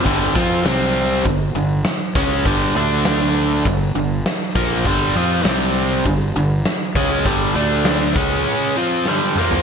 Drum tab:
CC |x---------------|----------------|----------------|----------------|
HH |----o---o---o---|o---o---o---o---|o---o---o---o---|o---o-----------|
SD |----o-------o---|----o-------o---|----o-------o---|----o-------o---|
T2 |----------------|----------------|----------------|--------------o-|
FT |----------------|----------------|----------------|---------------o|
BD |o-o-----o-----o-|o-------o-----o-|o-------o-----o-|o-----o---------|